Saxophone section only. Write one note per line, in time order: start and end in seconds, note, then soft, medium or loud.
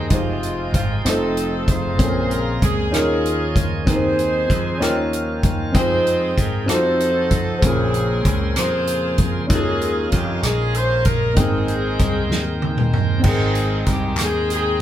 0.13 1.02 G#3 medium
0.13 1.02 C4 medium
0.13 0.73 F4 medium
0.74 1.03 F4 medium
1.07 1.96 C4 medium
1.07 1.96 D#4 medium
1.07 1.69 A4 medium
1.69 2.58 F4 medium
1.69 2.58 G#4 medium
1.69 2.31 C5 medium
2.32 2.62 A#4 medium
2.64 2.93 G#4 medium
2.94 3.84 C#4 medium
2.94 3.84 F4 medium
2.94 3.56 G#4 medium
3.90 5.10 D#4 medium
3.90 5.09 G#4 medium
3.90 5.10 C5 medium
5.76 6.65 D#4 medium
5.76 6.65 G#4 medium
5.76 6.35 C5 loud
6.40 6.70 A#4 medium
6.71 7.60 D#4 medium
6.71 7.60 A4 medium
6.71 7.32 C5 medium
7.33 7.61 C5 medium
7.65 8.54 C4 medium
7.65 8.54 C#4 medium
7.65 8.26 G#4 medium
8.27 8.55 G#4 medium
8.59 9.47 F4 medium
8.59 9.47 G#4 medium
8.59 9.24 C5 medium
9.53 10.42 C#4 medium
9.53 10.42 F4 medium
9.53 10.10 G#4 medium
10.16 10.43 G4 medium
10.44 10.75 G#4 medium
10.76 11.07 C5 medium
11.05 11.35 A#4 medium
11.38 12.58 C4 medium
11.38 12.59 D#4 medium
11.38 12.62 G#4 medium
13.27 14.15 C4 medium
13.27 14.15 D#4 medium
13.27 13.84 G#4 medium
13.91 14.20 G4 medium
14.23 14.52 G#4 medium
14.53 14.80 G#4 medium